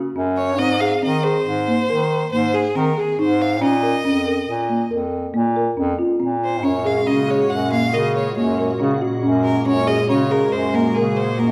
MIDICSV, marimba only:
0, 0, Header, 1, 2, 480
1, 0, Start_track
1, 0, Tempo, 431965
1, 659, Time_signature, 7, 2, 24, 8
1, 12797, End_track
2, 0, Start_track
2, 0, Title_t, "Marimba"
2, 0, Program_c, 0, 12
2, 177, Note_on_c, 0, 61, 66
2, 495, Note_off_c, 0, 61, 0
2, 657, Note_on_c, 0, 60, 83
2, 816, Note_off_c, 0, 60, 0
2, 898, Note_on_c, 0, 68, 62
2, 1057, Note_off_c, 0, 68, 0
2, 1142, Note_on_c, 0, 60, 77
2, 1299, Note_off_c, 0, 60, 0
2, 1382, Note_on_c, 0, 68, 67
2, 1698, Note_off_c, 0, 68, 0
2, 1864, Note_on_c, 0, 58, 64
2, 2021, Note_off_c, 0, 58, 0
2, 2106, Note_on_c, 0, 70, 70
2, 2421, Note_off_c, 0, 70, 0
2, 2586, Note_on_c, 0, 58, 67
2, 2743, Note_off_c, 0, 58, 0
2, 2819, Note_on_c, 0, 68, 67
2, 2978, Note_off_c, 0, 68, 0
2, 3061, Note_on_c, 0, 60, 73
2, 3219, Note_off_c, 0, 60, 0
2, 3302, Note_on_c, 0, 68, 65
2, 3460, Note_off_c, 0, 68, 0
2, 3543, Note_on_c, 0, 63, 70
2, 3859, Note_off_c, 0, 63, 0
2, 4015, Note_on_c, 0, 61, 84
2, 4175, Note_off_c, 0, 61, 0
2, 4253, Note_on_c, 0, 70, 61
2, 4414, Note_off_c, 0, 70, 0
2, 4497, Note_on_c, 0, 61, 74
2, 4656, Note_off_c, 0, 61, 0
2, 4732, Note_on_c, 0, 70, 65
2, 5052, Note_off_c, 0, 70, 0
2, 5215, Note_on_c, 0, 58, 62
2, 5375, Note_off_c, 0, 58, 0
2, 5455, Note_on_c, 0, 70, 65
2, 5773, Note_off_c, 0, 70, 0
2, 5934, Note_on_c, 0, 58, 70
2, 6094, Note_off_c, 0, 58, 0
2, 6182, Note_on_c, 0, 70, 65
2, 6340, Note_off_c, 0, 70, 0
2, 6413, Note_on_c, 0, 61, 59
2, 6574, Note_off_c, 0, 61, 0
2, 6653, Note_on_c, 0, 65, 60
2, 6814, Note_off_c, 0, 65, 0
2, 6887, Note_on_c, 0, 60, 63
2, 7208, Note_off_c, 0, 60, 0
2, 7367, Note_on_c, 0, 61, 74
2, 7530, Note_off_c, 0, 61, 0
2, 7608, Note_on_c, 0, 68, 64
2, 7770, Note_off_c, 0, 68, 0
2, 7851, Note_on_c, 0, 61, 76
2, 8012, Note_off_c, 0, 61, 0
2, 8095, Note_on_c, 0, 68, 68
2, 8414, Note_off_c, 0, 68, 0
2, 8577, Note_on_c, 0, 58, 62
2, 8736, Note_off_c, 0, 58, 0
2, 8814, Note_on_c, 0, 70, 70
2, 9133, Note_off_c, 0, 70, 0
2, 9294, Note_on_c, 0, 58, 64
2, 9454, Note_off_c, 0, 58, 0
2, 9532, Note_on_c, 0, 70, 64
2, 9693, Note_off_c, 0, 70, 0
2, 9775, Note_on_c, 0, 61, 69
2, 9935, Note_off_c, 0, 61, 0
2, 10015, Note_on_c, 0, 66, 69
2, 10175, Note_off_c, 0, 66, 0
2, 10256, Note_on_c, 0, 61, 76
2, 10574, Note_off_c, 0, 61, 0
2, 10737, Note_on_c, 0, 61, 74
2, 10896, Note_off_c, 0, 61, 0
2, 10973, Note_on_c, 0, 68, 66
2, 11134, Note_off_c, 0, 68, 0
2, 11216, Note_on_c, 0, 61, 81
2, 11376, Note_off_c, 0, 61, 0
2, 11457, Note_on_c, 0, 68, 66
2, 11775, Note_off_c, 0, 68, 0
2, 11934, Note_on_c, 0, 58, 74
2, 12095, Note_off_c, 0, 58, 0
2, 12182, Note_on_c, 0, 70, 68
2, 12498, Note_off_c, 0, 70, 0
2, 12654, Note_on_c, 0, 58, 67
2, 12797, Note_off_c, 0, 58, 0
2, 12797, End_track
0, 0, End_of_file